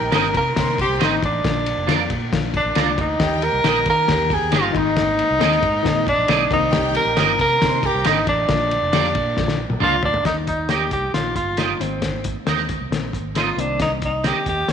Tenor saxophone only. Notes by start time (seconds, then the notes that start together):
Already playing: A#4
0.15 A#4
0.37 A#4
0.81 G4
1.02 D#4
1.25 D4
2.56 D4
3.01 D#4
3.44 A#4
3.89 A#4
4.33 G#4
4.55 F4
4.77 D#4
6.08 D4
6.53 D#4
6.96 A#4
7.41 A#4
7.86 G4
8.07 D#4
8.29 D4
9.83 F4
10.05 D4
10.26 D#4
10.48 D#4
10.70 G4
10.93 G4
11.14 F4
11.36 F4
11.81 C4
13.37 F4
13.59 D4
13.82 D#4
14.05 D#4
14.26 G4
14.49 G4